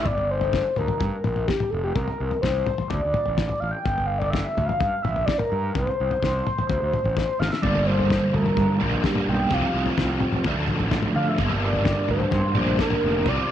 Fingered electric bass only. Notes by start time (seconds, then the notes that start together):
0.05 G1
0.78 D2
1.00 G2
1.26 A#1
1.72 F1
1.95 C2
2.20 C2
2.43 C2
2.90 D2
3.05 D2
3.28 A1
3.62 A1
3.86 G1
4.57 D2
4.80 G2
5.04 A#1
5.52 G2
5.75 C2
6.00 C2
6.22 C2
6.70 D2
6.82 D2
7.04 A1
7.40 G#1
7.63 G1
8.33 D2
8.57 G2
8.81 A#1
9.27 B1
9.51 C2
9.74 C2
9.98 C2
10.45 D2
10.57 D2
10.80 A1
11.15 D3
11.38 G1
12.09 D2
12.32 G2
12.56 A#1
13.04 F1
13.26 C2